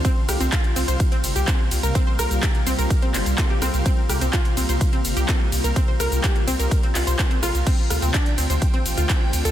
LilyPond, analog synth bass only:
\new Staff \with { instrumentName = "Analog synth bass" } { \clef bass \time 4/4 \key c \mixolydian \tempo 4 = 126 r8 c,16 c,16 r8 c,16 c,16 r8 g,,16 c,16 r8 c,16 c,16 | r8 c,16 c,16 r8 c,16 c,16 r8 g,,16 c,16 r8 c,16 c,16 | r8 c,16 c,16 r8 c,16 c,16 r8 g,,16 c,16 r8 c,16 c,16 | r8 c,16 c,16 r8 c,16 c,16 r8 c,16 c,16 r8 bes,,16 c,16 |
r8 d,16 d,16 r8 d,16 d,16 r8 a,,16 d,16 r8 d,16 d,16 | }